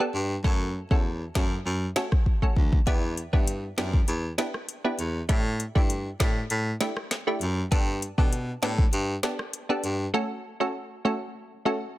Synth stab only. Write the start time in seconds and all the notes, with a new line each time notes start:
0.00 B3 D4 G4 A4
0.44 A3 C#4 F#4 A4
0.91 A3 C#4 F#4 A4
1.35 A3 C#4 F#4 A4
1.96 A3 C#4 F#4 A4
2.42 A3 C#4 F#4 A4
2.87 B3 D4 E4 G4
3.33 B3 D4 E4 G4
3.78 B3 D4 E4 G4
4.38 B3 D4 E4 G4
4.84 B3 D4 E4 G4
5.29 A3 D4 E4 G4
5.75 A3 D4 E4 G4
6.20 A3 D4 E4 G4
6.81 A3 D4 E4 G4
7.27 A3 D4 E4 G4
7.71 B3 D4 G4 A4
8.18 B3 D4 G4 A4
8.62 B3 D4 G4 A4
9.23 B3 D4 G4 A4
9.69 B3 D4 G4 A4
10.14 A3 C#4 F#4 A4
10.60 A3 C#4 F#4 A4
11.05 A3 C#4 F#4 A4
11.65 A3 C#4 F#4 A4